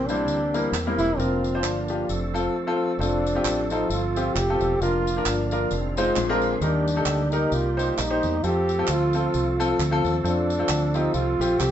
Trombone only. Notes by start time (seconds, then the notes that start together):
0.07 D4
0.98 E4
1.18 C4
1.63 D4
3.00 D4
3.71 D#4
3.91 F4
4.35 G4
4.81 F4
5.26 D4
6.63 D4
7.31 D#4
7.54 F4
8.00 D#4
8.44 G4
8.91 F4
10.26 D4
10.96 D#4
11.14 F4
11.59 G4